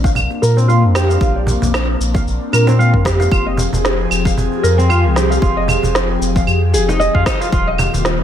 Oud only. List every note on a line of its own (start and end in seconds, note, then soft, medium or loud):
0.04 0.11 F5 medium
0.42 0.55 A#4 medium
0.57 0.68 C4 medium
0.68 0.82 F4 loud
0.95 1.09 G4 medium
1.09 1.16 F5 medium
1.21 1.34 F4 medium
1.36 1.47 D5 medium
2.15 2.21 F5 medium
2.53 2.66 A#4 medium
2.68 2.78 C4 loud
2.79 2.93 F4 loud
3.05 3.19 G4 medium
3.20 3.27 F5 medium
3.32 3.45 F4 medium
3.46 3.57 D#5 medium
4.25 4.32 F5 medium
4.63 4.77 A#4 medium
4.78 4.89 C4 medium
4.89 5.04 F4 medium
5.16 5.30 G4 medium
5.30 5.37 F5 medium
5.42 5.55 F4 medium
5.57 5.68 D#5 medium
6.36 6.42 F5 medium
6.74 6.87 G#4 medium
6.88 6.99 D#4 medium
7.00 7.14 D#5 medium
7.14 7.25 F4 medium
7.26 7.39 D#4 medium
7.41 7.47 F4 medium
7.52 7.66 F4 medium
7.67 7.78 D#5 medium